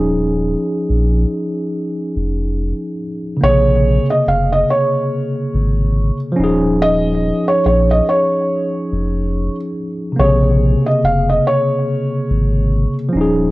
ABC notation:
X:1
M:4/4
L:1/16
Q:"Swing 16ths" 1/4=71
K:Bbm
V:1 name="Felt piano"
z16 | d3 e f e d6- d z3 | e3 d d e d6- d z3 | d3 e f e d6- d z3 |]
V:2 name="Tine electric piano"
[F,DEA]12- [F,DEA]2 z2 | [C,D,B,A]12- [C,D,B,A]2 [F,DEA]2- | [F,DEA]12- [F,DEA]2 z2 | [C,D,B,A]12- [C,D,B,A]2 [F,DEA]2 |]
V:3 name="Sub bass" clef=bass
E,,,3 z B,,,2 z4 F,,,3 z3 | B,,,3 z F,,,2 z4 A,,,3 z E,,,2- | E,,,3 z B,,,2 z4 F,,,3 z3 | B,,,3 z F,,,2 z4 A,,,3 z E,,,2 |]